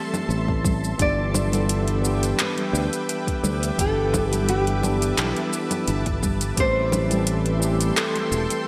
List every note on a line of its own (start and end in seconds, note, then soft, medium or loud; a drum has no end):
0.00 0.47 E3 medium
0.00 0.47 G3 medium
0.00 0.48 A3 medium
0.00 0.49 C4 medium
0.00 1.00 G4 medium
0.00 0.49 A4 medium
0.00 0.95 A4 medium
0.00 0.96 E5 medium
0.00 0.97 A5 medium
0.00 0.95 C6 medium
0.14 low conga medium
0.14 shaker soft
0.29 0.93 A1 medium
0.29 shaker soft
0.47 0.95 E3 medium
0.47 0.95 G3 medium
0.47 0.95 A3 medium
0.47 0.96 C4 medium
0.47 0.96 A4 medium
0.47 kick medium
0.64 kick loud
0.64 high conga medium
0.64 shaker medium
0.84 shaker soft
0.97 2.32 G1 medium
0.97 1.47 E3 medium
0.97 1.48 G3 medium
0.97 1.48 B3 medium
0.97 1.49 D4 medium
0.97 1.49 G4 medium
0.97 6.54 B4 medium
0.97 8.68 E5 medium
0.97 3.76 G5 medium
0.97 6.54 D6 medium
0.97 kick loud
0.97 closed hi-hat soft
0.97 shaker soft
1.02 2.41 D5 medium
1.34 low conga medium
1.34 shaker medium
1.51 1.99 E3 medium
1.51 2.00 G3 medium
1.51 2.00 B3 medium
1.51 2.00 D4 medium
1.51 2.01 A4 medium
1.51 closed hi-hat soft
1.51 high conga medium
1.51 shaker soft
1.69 closed hi-hat medium
1.69 shaker soft
1.88 closed hi-hat soft
2.00 3.73 E3 medium
2.00 3.74 G3 medium
2.00 3.74 B3 medium
2.05 3.75 D4 medium
2.05 3.76 G4 loud
2.05 shaker medium
2.23 closed hi-hat soft
2.23 shaker soft
2.39 3.80 B4 medium
2.39 clap medium
2.39 closed hi-hat medium
2.39 shaker soft
2.57 closed hi-hat soft
2.57 high conga medium
2.73 2.88 D2 medium
2.73 shaker medium
2.93 closed hi-hat soft
2.93 shaker soft
3.09 closed hi-hat soft
3.09 shaker soft
3.27 kick medium
3.27 closed hi-hat soft
3.44 3.70 D2 medium
3.44 high conga medium
3.44 shaker medium
3.63 closed hi-hat soft
3.63 shaker soft
3.77 5.12 G1 medium
3.77 4.27 E3 medium
3.77 4.27 G3 medium
3.77 4.27 B3 medium
3.77 4.28 D4 medium
3.77 4.28 G4 medium
3.77 4.29 A4 medium
3.77 6.55 A5 medium
3.77 kick loud
3.77 closed hi-hat medium
3.77 shaker soft
4.13 kick medium
4.13 low conga medium
4.13 shaker medium
4.29 4.79 E3 medium
4.29 4.79 G3 medium
4.29 4.79 B3 medium
4.29 4.45 G4 medium
4.29 high conga medium
4.33 4.80 D4 medium
4.33 4.80 A4 medium
4.33 closed hi-hat soft
4.33 shaker soft
4.49 5.19 G4 medium
4.49 closed hi-hat medium
4.49 shaker soft
4.67 closed hi-hat soft
4.80 6.52 E3 medium
4.80 6.53 G3 medium
4.80 6.54 B3 medium
4.80 low conga medium
4.80 shaker medium
4.85 6.54 D4 medium
4.85 6.55 G4 medium
5.02 closed hi-hat soft
5.02 shaker soft
5.18 5.32 B1 medium
5.18 6.19 E4 medium
5.18 clap medium
5.18 closed hi-hat medium
5.18 shaker soft
5.36 closed hi-hat soft
5.36 high conga medium
5.53 shaker medium
5.71 closed hi-hat soft
5.71 low conga medium
5.71 shaker soft
5.88 6.51 G1 medium
5.88 closed hi-hat medium
5.88 shaker soft
6.06 kick medium
6.06 closed hi-hat soft
6.23 kick medium
6.23 high conga medium
6.23 shaker medium
6.41 closed hi-hat soft
6.41 shaker soft
6.56 7.91 A1 loud
6.56 7.06 E3 medium
6.56 7.06 G3 medium
6.56 7.07 A3 medium
6.56 7.07 C4 medium
6.56 7.07 G4 medium
6.56 8.68 A4 medium
6.56 8.68 G5 medium
6.56 8.68 C6 medium
6.56 kick loud
6.56 closed hi-hat soft
6.56 shaker soft
6.60 8.02 C5 loud
6.92 low conga medium
6.92 shaker medium
7.09 7.57 E3 medium
7.09 7.58 G3 medium
7.09 7.58 A3 medium
7.09 7.58 C4 medium
7.09 7.59 A4 medium
7.09 closed hi-hat soft
7.09 high conga medium
7.09 shaker soft
7.27 closed hi-hat medium
7.27 shaker soft
7.46 closed hi-hat soft
7.59 8.68 E3 medium
7.59 8.68 G3 medium
7.59 8.68 A3 medium
7.59 shaker medium
7.63 8.68 C4 medium
7.63 8.68 G4 loud
7.81 closed hi-hat soft
7.81 shaker soft
7.96 8.62 A4 medium
7.96 clap medium
7.96 closed hi-hat medium
7.96 shaker soft
8.16 closed hi-hat soft
8.16 high conga medium
8.32 8.46 E1 medium
8.32 shaker medium
8.50 closed hi-hat soft
8.50 shaker soft